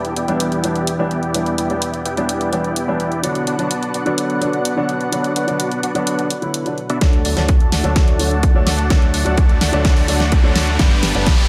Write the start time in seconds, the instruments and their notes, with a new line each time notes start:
Already playing: analog synth pad E2 E3 D4 G4, supersaw synth B3 E4 G4 D5 A5
0.05 closed hi-hat
0.16 supersaw synth B3 E4 G4 D5 G5, closed hi-hat
0.28 grand piano E3 G3 B3 D4, supersaw synth B3 E4 G4 D5 G5, closed hi-hat
0.40 closed hi-hat
0.52 closed hi-hat
0.63 grand piano E3 G3 B3 D4, closed hi-hat
0.75 closed hi-hat
0.87 closed hi-hat
0.99 grand piano E3 G3 B3 D4, supersaw synth B3 E4 G4 D5 G5
1.11 closed hi-hat
1.23 closed hi-hat
1.34 grand piano E3 G3 B3 D4, closed hi-hat
1.46 closed hi-hat
1.58 supersaw synth B3 E4 G4 D5 G5, closed hi-hat
1.70 grand piano E3 G3 B3 D4, supersaw synth B3 E4 G4 D5 G5, closed hi-hat
1.82 closed hi-hat
1.94 closed hi-hat
2.05 supersaw synth B3 E4 G4 D5 G5, closed hi-hat
2.17 grand piano E3 G3 B3 D4, supersaw synth B3 E4 G4 D5 G5, closed hi-hat
2.29 closed hi-hat
2.41 closed hi-hat
2.52 grand piano E3 G3 B3 D4, supersaw synth B3 E4 G4 D5 G5, closed hi-hat
2.64 closed hi-hat
2.76 closed hi-hat
2.87 grand piano E3 G3 B3 D4
3.00 closed hi-hat
3.12 closed hi-hat
3.23 analog synth pad B2 F#3 B4 F#5, grand piano D3 F#3 B3 D4, supersaw synth B3 D4 F#4 D5 F#5, closed hi-hat
3.35 closed hi-hat
3.47 supersaw synth B3 D4 F#4 D5 A5, closed hi-hat
3.58 grand piano D3 F#3 B3 D4, supersaw synth B3 D4 F#4 D5 A5, closed hi-hat
3.71 closed hi-hat
3.83 closed hi-hat
3.94 supersaw synth B3 D4 F#4 D5 F#5, closed hi-hat
4.05 grand piano D3 F#3 B3 D4, supersaw synth B3 D4 F#4 D5 F#5, closed hi-hat
4.18 closed hi-hat
4.30 closed hi-hat
4.41 grand piano D3 F#3 B3 D4, closed hi-hat
4.53 closed hi-hat
4.65 closed hi-hat
4.76 grand piano D3 F#3 B3 D4, supersaw synth B3 D4 F#4 D5 F#5
4.89 closed hi-hat
5.01 closed hi-hat
5.12 grand piano D3 F#3 B3 D4, closed hi-hat
5.24 closed hi-hat
5.36 supersaw synth B3 D4 F#4 D5 F#5, closed hi-hat
5.47 grand piano D3 F#3 B3 D4, supersaw synth B3 D4 F#4 D5 F#5, closed hi-hat
5.60 closed hi-hat
5.72 closed hi-hat
5.83 supersaw synth B3 D4 F#4 D5 F#5, closed hi-hat
5.95 grand piano D3 F#3 B3 D4, supersaw synth B3 D4 F#4 D5 F#5, closed hi-hat
6.07 closed hi-hat
6.19 closed hi-hat
6.30 closed hi-hat
6.42 grand piano D3 F#3 B3 E4, closed hi-hat
6.54 closed hi-hat
6.65 grand piano D3 F#3 B3 D4, closed hi-hat
6.78 closed hi-hat
6.90 supersaw synth B3 D4 F#4 D5 E5, closed hi-hat
7.01 sub bass D2, grand piano D3 F#3 A3 D4, analog synth pad D3 D4 F#4 A4 A5, supersaw synth A3 D4 F#4 D5 F#5, kick, snare, closed hi-hat, riser
7.13 closed hi-hat
7.25 sub bass D2, supersaw synth A3 D4 F#4 D5 A5, open hi-hat
7.36 sub bass D2, grand piano D3 F#3 A3 D4, supersaw synth A3 D4 F#4 D5 A5, snare, closed hi-hat
7.49 kick, closed hi-hat
7.60 closed hi-hat
7.72 sub bass D2, supersaw synth A3 D4 F#4 D5 F#5, snare, open hi-hat
7.83 sub bass D2, grand piano D3 F#3 A3 D4, supersaw synth A3 D4 F#4 D5 F#5, closed hi-hat
7.96 kick, snare, closed hi-hat
8.08 closed hi-hat
8.19 grand piano D3 F#3 A3 D4, open hi-hat
8.43 kick, closed hi-hat
8.54 sub bass D2, grand piano D3 F#3 A3 D4, supersaw synth A3 D4 F#4 D5 F#5
8.67 snare, open hi-hat
8.79 closed hi-hat
8.90 grand piano D3 F#3 A3 D4, kick, snare, closed hi-hat
9.02 closed hi-hat
9.14 sub bass D2, supersaw synth A3 D4 F#4 D5 F#5, open hi-hat
9.25 sub bass D2, grand piano D3 F#3 A3 D4, supersaw synth A3 D4 F#4 D5 F#5, closed hi-hat
9.38 kick, closed hi-hat
9.49 closed hi-hat
9.61 sub bass D2, supersaw synth A3 D4 F#4 D5 F#5, snare, open hi-hat
9.72 sub bass D2, grand piano D3 F#3 A3 D4, supersaw synth A3 D4 F#4 D5 F#5, closed hi-hat
9.85 kick, snare, closed hi-hat
9.97 open hi-hat
10.08 sub bass D2, grand piano D3 F#3 A3 D4, supersaw synth A3 D4 F#4 D5 F#5, open hi-hat
10.20 snare, closed hi-hat
10.32 kick, closed hi-hat
10.43 grand piano D3 F#3 A3 D4
10.56 snare, open hi-hat
10.67 closed hi-hat
10.79 sub bass G1, grand piano G2 D3 G3 B3 D4, supersaw synth B3 D4 G4 D5 G5, analog synth pad G4 B4, kick, snare, closed hi-hat
10.91 closed hi-hat
11.03 sub bass G1, supersaw synth B3 D4 G4 D5 A5, snare, open hi-hat
11.14 sub bass G1, grand piano G2 D3 G3 B3 D4, supersaw synth B3 D4 G4 D5 A5, closed hi-hat
11.27 kick, snare, closed hi-hat
11.38 closed hi-hat